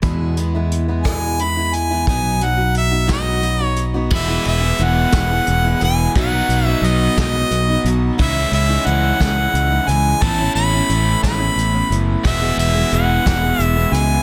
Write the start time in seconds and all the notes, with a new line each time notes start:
0.02 E2 B2 E3 G#3 B3 E4, kick, closed hi-hat
0.37 E3 G#3 B3 E4, closed hi-hat
0.55 E3 G#3 B3 E4
0.72 closed hi-hat
0.88 E3 G#3 B3 E4
1.03 E2 B2 E3 G#3 B3 E4 G#5, kick, cross-stick, closed hi-hat
1.39 E3 G#3 B3 E4 B5, closed hi-hat
1.57 E3 G#3 B3 E4
1.73 G#5, closed hi-hat
1.91 E3 G#3 B3 E4
2.07 B1 B2 F#3 B3 D#4 F#4 G#5, kick, closed hi-hat
2.41 F#3 B3 D#4 F#4 F#5, closed hi-hat
2.57 B3 D#4 F#4
2.75 E5, closed hi-hat
2.91 B3 D#4 F#4
3.07 B2 F#3 B3 D#4 F#4, kick, snare, closed hi-hat
3.12 D#5
3.41 F#3 B3 D#4 F#4, closed hi-hat
3.60 B3 D#4 F#4
3.64 C#5
3.76 closed hi-hat
3.94 B3 D#4 F#4
4.10 E1 E2 B2 E3 G#3 B3 E4 G#4, kick, crash
4.15 E5
4.28 E3 B3 E4 G#4
4.45 E1 E5, closed hi-hat
4.62 E3 B3 E4 G#4
4.78 E1 E3 B3 E4 G#4, closed hi-hat
4.83 F#5
5.12 E1 E2 B2 E3 B3 E4 G#4, kick, snare, closed hi-hat
5.30 E3 B3 E4 G#4
5.47 E1, closed hi-hat
5.64 E3 B3 E4 G#4
5.80 E1 E3 B3 E4 G#4, closed hi-hat
5.84 G#5
6.15 B1 B2 F#3 B3 D#4 F#4, kick, closed hi-hat
6.20 F#5
6.32 B3 D#4 F#4
6.48 B1, closed hi-hat
6.66 B3 D#4 F#4 E5
6.81 B1 F#3 B3 D#4 F#4, closed hi-hat
6.86 D#5
7.17 B1 B2 F#3 B3 D#4 F#4 D#5, kick, snare, closed hi-hat
7.35 B3 D#4 F#4
7.51 B1, closed hi-hat
7.69 B3 D#4 F#4
7.84 B1 F#3 B3 D#4 F#4, closed hi-hat
8.18 C#2 C#3 E3 G#3 C#4 D#4 E4 E5, kick, closed hi-hat
8.35 G#3 E4
8.51 C#2 E5, closed hi-hat
8.69 G#3 D#4 E4
8.86 C#2 E3 G#3 E4 F#5, closed hi-hat
9.19 C#2 C#3 E3 G#3 D#4 E4, kick, snare, closed hi-hat
9.35 G#3 E4
9.53 C#2, closed hi-hat
9.70 G#3 D#4 E4
9.87 C#2 E3 G#3 E4 G#5, closed hi-hat
10.22 A1 A2 E3 A3 B3 C#4 E4 A5, kick, closed hi-hat
10.39 B3 C#4 E4
10.55 A1 B5, closed hi-hat
10.73 B3 C#4 E4
10.89 A1 E3 B3 C#4 E4, closed hi-hat
11.22 A1 A2 E3 B3 C#4 E4 B5, kick, snare, closed hi-hat
11.38 B3 C#4 E4
11.56 A1, closed hi-hat
11.73 B3 C#4 E4
11.90 F#1 E3 B3 C#4 E4, closed hi-hat
12.23 E1 E2 B2 E3 G#3 B3 G#4 E5, kick, closed hi-hat
12.27 E4
12.41 E3 G#3 B3 G#4
12.57 E1 E5, closed hi-hat
12.74 E3 G#3 B3 G#4
12.91 E1 E3 G#3 B3 G#4 F#5, closed hi-hat
13.25 E1 E2 B2 E3 G#3 B3 G#4, kick, snare, closed hi-hat
13.43 E3 G#3 B3 G#4
13.59 E1 E5, closed hi-hat
13.76 E3 G#3 B3 G#4
13.92 C#2 E3 G#3 B3 G#4 G#5, closed hi-hat